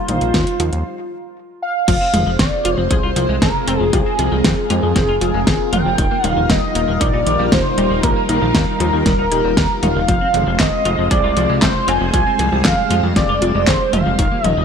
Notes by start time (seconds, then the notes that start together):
Already playing: G3 D#4 F4 C5
0.08 A#1 D#4, closed hi-hat, mid tom
0.21 A#1, closed hi-hat
0.34 D#2 D#3, kick, snare, closed hi-hat
0.47 closed hi-hat
0.60 D#2 F3, closed hi-hat
0.73 D#2, closed hi-hat
1.62 F5
1.88 F1 F3 G#3 C4 F4 C5, kick, closed hi-hat, crash
2.01 C4
2.14 F1 F3 G#3, closed hi-hat, mid tom
2.26 F1 F3
2.39 F1 C4 D5, kick, snare, closed hi-hat
2.65 F1 F4, closed hi-hat
2.78 F1 F3
2.90 C2 F3 G#4 C5, kick, closed hi-hat
3.03 C2 F4
3.16 C2 F3, closed hi-hat
3.29 C2 G#3
3.42 F1 G#3 C4 A#4, kick, snare, closed hi-hat, mid tom
3.67 F1 C4 F4, closed hi-hat
3.80 F1 F3
3.93 C2 F3 F4 G#4 A#4, kick, closed hi-hat
4.06 C4
4.19 C2 F3 G#4, closed hi-hat
4.32 C2 F3
4.44 F2 F3 C4, kick, snare, closed hi-hat
4.70 F2 G#3 F4 G#4, closed hi-hat
4.83 F2 F3
4.96 F1 F3 C4, kick, snare, closed hi-hat
5.09 F1 F4
5.21 F1 F3 F4, closed hi-hat
5.34 F1 G#3
5.47 F1 C4 G#4, kick, snare, closed hi-hat
5.73 F1 F3 F4 G5, closed hi-hat, mid tom
5.85 F1 F3
5.98 D#1 D#3 G3 D#4, kick, closed hi-hat
6.11 A#3
6.24 D#1 D#3 F3 F5, closed hi-hat, mid tom
6.37 D#1 D#3
6.49 D#1 G3 A#3 D#5, kick, snare, closed hi-hat
6.75 D#1 A#3 D#4, closed hi-hat
6.88 D#1 D#3
7.01 A#1 D#3 D#4 D5, kick, closed hi-hat
7.14 A#1 D#4
7.26 A#1 D#3, closed hi-hat
7.39 A#1 G3
7.52 D#1 F3 A#3 C5, kick, snare, closed hi-hat, mid tom
7.78 D#1 G3 D#4, closed hi-hat
7.91 D#1 D#3
8.03 A#1 D#3 A#3 A#4, kick, closed hi-hat
8.16 A#3
8.29 A#1 D#3 D#4, closed hi-hat
8.42 A#1 D#3
8.55 D#2 D#3 A#3, kick, snare, closed hi-hat
8.80 D#2 F3 D#4 A#4, closed hi-hat
8.93 D#2 D#3
9.06 D#1 D#3 G3, kick, snare, closed hi-hat
9.19 D#1 D#4
9.31 D#1 D#3 G4, closed hi-hat
9.44 D#1 G3
9.57 D#1 G3 A#3, kick, snare, closed hi-hat
9.83 D#1 D#3 D#4 F5, closed hi-hat, mid tom
9.96 D#1 D#3
10.08 F1 F3 G#3 C4 C5, kick, closed hi-hat
10.21 C4
10.34 F1 F3 G#3, closed hi-hat, mid tom
10.47 F1 F3
10.60 F1 C4 D#5, kick, snare, clap, closed hi-hat
10.85 F1 F4, closed hi-hat
10.98 F1 F3
11.11 C2 F3 G#4 D5, kick, closed hi-hat
11.24 C2 F4
11.37 C2 F3, closed hi-hat
11.49 C2 G#3
11.62 F1 G#3 C4 C5, kick, snare, clap, closed hi-hat, mid tom
11.88 F1 C4 F4 G#5, closed hi-hat
12.01 F1 F3
12.14 C2 F3 G3 F4, kick, closed hi-hat
12.27 C4
12.39 C2 F3 G#4, closed hi-hat
12.52 C2 F3
12.65 F2 F3 C4 F5, kick, snare, clap, closed hi-hat
12.90 F2 G#3 F4, closed hi-hat
13.03 F2 F3
13.16 F1 F3 C4 D5, kick, snare, closed hi-hat
13.29 F1 F4
13.42 F1 F3 F4, closed hi-hat
13.55 F1 G#3
13.67 F1 C4 G#4 C5, kick, snare, clap, closed hi-hat
13.93 F1 F3 F4 F5, closed hi-hat, mid tom
14.06 F1 F3
14.19 D#1 D#3 G3 D#4 F4 A#4, kick, closed hi-hat
14.31 A#3
14.44 D#1 D#3 F3 D#5, closed hi-hat, mid tom
14.57 D#1 D#3